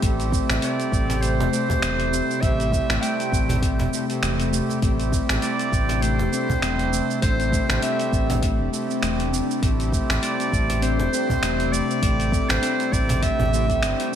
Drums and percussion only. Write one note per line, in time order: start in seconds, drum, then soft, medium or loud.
0.02 kick loud
0.02 closed hi-hat medium
0.02 cabasa soft
0.20 closed hi-hat soft
0.20 cabasa soft
0.32 kick loud
0.32 cabasa medium
0.50 finger snap medium
0.50 cajon slap medium
0.50 cabasa soft
0.62 closed hi-hat medium
0.62 cabasa soft
0.80 closed hi-hat soft
0.80 cabasa soft
0.92 kick loud
0.92 cabasa medium
1.10 cajon slap medium
1.10 closed hi-hat soft
1.10 cabasa soft
1.23 closed hi-hat medium
1.23 cabasa soft
1.40 cajon slap medium
1.53 cabasa medium
1.70 kick medium
1.70 cajon bass loud
1.70 cabasa soft
1.82 finger snap medium
1.82 closed hi-hat medium
1.82 cabasa soft
2.00 closed hi-hat soft
2.13 cabasa medium
2.31 cabasa soft
2.42 kick loud
2.42 closed hi-hat medium
2.42 cabasa soft
2.60 closed hi-hat soft
2.60 cabasa soft
2.72 kick loud
2.72 cabasa medium
2.90 finger snap medium
2.90 cajon slap medium
2.90 cabasa soft
3.03 closed hi-hat medium
3.03 cabasa soft
3.20 closed hi-hat soft
3.20 cabasa soft
3.32 kick loud
3.32 cabasa medium
3.49 cajon bass medium
3.49 cajon slap medium
3.49 closed hi-hat soft
3.49 cabasa soft
3.62 kick loud
3.62 closed hi-hat medium
3.62 cabasa soft
3.79 cajon bass medium
3.79 closed hi-hat soft
3.93 cabasa medium
4.10 closed hi-hat soft
4.10 cabasa soft
4.23 finger snap medium
4.23 closed hi-hat medium
4.23 cabasa soft
4.40 closed hi-hat soft
4.40 cabasa soft
4.53 cabasa medium
4.69 cajon slap soft
4.69 cabasa soft
4.82 kick loud
4.82 closed hi-hat medium
4.82 cabasa soft
5.00 closed hi-hat soft
5.00 cabasa soft
5.12 kick loud
5.12 cabasa medium
5.29 finger snap medium
5.29 cajon slap medium
5.29 cabasa soft
5.42 closed hi-hat medium
5.42 cabasa soft
5.59 closed hi-hat soft
5.59 cabasa soft
5.72 kick medium
5.72 cabasa medium
5.89 cajon slap medium
5.89 closed hi-hat soft
5.89 cabasa soft
6.02 closed hi-hat medium
6.02 cabasa soft
6.19 cajon slap medium
6.33 cabasa medium
6.50 kick medium
6.50 cajon bass medium
6.50 cabasa soft
6.62 finger snap medium
6.62 closed hi-hat medium
6.62 cabasa soft
6.79 closed hi-hat soft
6.93 cabasa medium
7.10 cabasa soft
7.22 kick loud
7.22 closed hi-hat medium
7.22 cabasa soft
7.40 closed hi-hat soft
7.40 cabasa soft
7.52 kick loud
7.52 cabasa medium
7.69 finger snap medium
7.69 cajon slap medium
7.69 cabasa soft
7.82 closed hi-hat medium
7.82 cabasa soft
8.00 closed hi-hat soft
8.00 cabasa soft
8.12 kick medium
8.12 cabasa medium
8.30 cajon bass medium
8.30 cajon slap medium
8.30 closed hi-hat soft
8.30 cabasa soft
8.42 kick medium
8.42 closed hi-hat medium
8.42 cabasa soft
8.74 cabasa medium
8.91 cabasa soft
9.03 finger snap medium
9.03 closed hi-hat medium
9.03 cabasa soft
9.20 closed hi-hat soft
9.34 cabasa medium
9.51 cabasa soft
9.63 kick loud
9.63 closed hi-hat medium
9.63 cabasa soft
9.80 closed hi-hat soft
9.80 cabasa soft
9.92 kick loud
9.92 cabasa medium
10.10 finger snap medium
10.10 cajon slap medium
10.10 cabasa soft
10.23 closed hi-hat medium
10.23 cabasa soft
10.40 closed hi-hat soft
10.40 cabasa soft
10.52 kick medium
10.52 cabasa medium
10.70 cajon slap medium
10.70 closed hi-hat soft
10.70 cabasa soft
10.82 closed hi-hat medium
10.82 cabasa soft
10.99 cajon slap medium
11.13 cabasa medium
11.30 kick medium
11.30 cajon bass medium
11.30 cabasa soft
11.43 finger snap medium
11.43 closed hi-hat medium
11.43 cabasa soft
11.60 closed hi-hat soft
11.74 cabasa medium
11.91 cabasa soft
12.02 kick loud
12.02 closed hi-hat medium
12.02 cabasa soft
12.20 closed hi-hat soft
12.20 cabasa soft
12.32 kick loud
12.32 cabasa medium
12.49 finger snap medium
12.49 cajon slap medium
12.49 closed hi-hat soft
12.49 cabasa soft
12.63 closed hi-hat medium
12.63 cabasa soft
12.80 closed hi-hat soft
12.80 cabasa soft
12.92 kick medium
12.92 cabasa medium
13.09 cajon bass medium
13.09 cajon slap medium
13.09 closed hi-hat soft
13.09 cabasa soft
13.22 kick medium
13.22 closed hi-hat medium
13.22 cabasa soft
13.40 cajon bass medium
13.54 cabasa medium
13.70 kick medium
13.70 closed hi-hat soft
13.70 cabasa soft
13.83 finger snap medium
13.83 closed hi-hat medium
13.83 cabasa soft
14.00 closed hi-hat soft